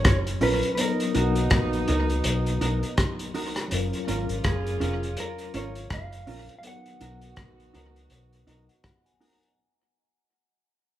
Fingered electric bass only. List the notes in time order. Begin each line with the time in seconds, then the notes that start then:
0.06 F#1
0.42 A#1
1.15 B1
1.51 A#1
1.89 C#2
2.26 B1
2.62 B1
3.72 F#1
4.09 G#1
4.30 G#1
4.45 F#1
4.81 F1
5.54 G#1
5.91 F#1
6.28 A#1
7.01 B1
7.37 A#1
7.75 C#2
8.11 B1
8.47 B1